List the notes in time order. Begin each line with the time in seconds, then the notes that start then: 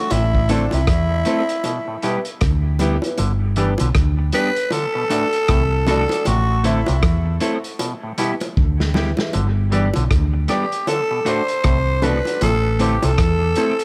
Already playing: F#4
0.10 A1 C3 E4, closed hi-hat, high bongo
0.35 kick
0.49 D3 A3 C4 D4 E4 A4 C5, closed hi-hat
0.71 C2 C3 E4, closed hi-hat, high bongo
0.87 E2, kick, cross-stick, closed hi-hat
1.11 muted clean electric guitar stroke
1.25 A3 C4 E4 A4 C5, closed hi-hat, high bongo
1.49 closed hi-hat
1.64 B2, closed hi-hat, high bongo
1.88 A2
2.02 B2 G3 B3 E4 G4 B4, closed hi-hat
2.25 closed hi-hat
2.41 D2, kick, cross-stick, closed hi-hat
2.79 G3 B3 E4 G4 B4, closed hi-hat, low bongo
3.02 B3 E4 G4 B4, closed hi-hat, high bongo
3.18 G1 D3, closed hi-hat, high bongo
3.56 E3 G3 B3 D4 G4 B4, closed hi-hat
3.78 B1 D3, closed hi-hat, high bongo
3.95 D2, kick, cross-stick, closed hi-hat
4.19 muted clean electric guitar stroke
4.32 G3 B3 D4 G4 B4, closed hi-hat, high bongo
4.56 closed hi-hat
4.71 D3 A4, closed hi-hat, high bongo
4.95 B2
5.10 A2 A3 D4 F#4 A4 D5, closed hi-hat
5.33 closed hi-hat
5.48 C2 A2, kick, cross-stick, closed hi-hat
5.87 B2 A3 D4 F#4 A4 D5, closed hi-hat, low bongo
6.09 D4 F#4 A4 D5, closed hi-hat, high bongo
6.25 A1 C3 F#4, closed hi-hat, high bongo
6.64 D3 A3 C4 E4 A4 C5 E5, closed hi-hat
6.86 C2 C3, closed hi-hat, high bongo
7.03 E2, kick, cross-stick, closed hi-hat
7.26 muted clean electric guitar stroke
7.40 A3 C4 E4 A4 C5 E5, closed hi-hat, high bongo
7.64 closed hi-hat
7.79 B2, closed hi-hat, high bongo
8.03 A2
8.18 B2 G3 B3 E4 G4 B4 E5, closed hi-hat
8.40 closed hi-hat, high bongo
8.57 D2, kick
8.80 snare
8.94 G3 B3 E4 G4 B4 E5, snare, low bongo
9.17 E4 G4 B4 E5, snare, high bongo
9.33 G1 D3, closed hi-hat, high bongo
9.72 E3 G3 B3 D4 G4 B4 D5, closed hi-hat
9.94 B1 D3, closed hi-hat, high bongo
10.11 D2, kick, cross-stick, closed hi-hat
10.34 muted clean electric guitar stroke
10.48 G3 B3 D4 G4 B4 D5, cross-stick, closed hi-hat, high bongo
10.72 closed hi-hat
10.87 D3 A4, closed hi-hat, high bongo
11.11 B2
11.25 A2 A3 D4 F#4 A4 C5 D5, closed hi-hat
11.48 closed hi-hat
11.64 C2 A2, kick, cross-stick, closed hi-hat
12.02 B2 A3 D4 F#4 A4 B4 D5, closed hi-hat, low bongo
12.25 D4 F#4 A4 D5, closed hi-hat, high bongo
12.41 A1 C3 A4, closed hi-hat, high bongo
12.79 D3 A3 C4 E4 G4 A4 C5, closed hi-hat
13.02 C2 C3 A4, closed hi-hat, high bongo
13.18 E2, kick, cross-stick, closed hi-hat
13.41 muted clean electric guitar stroke
13.55 A3 C4 E4 A4 C5, closed hi-hat, high bongo
13.79 closed hi-hat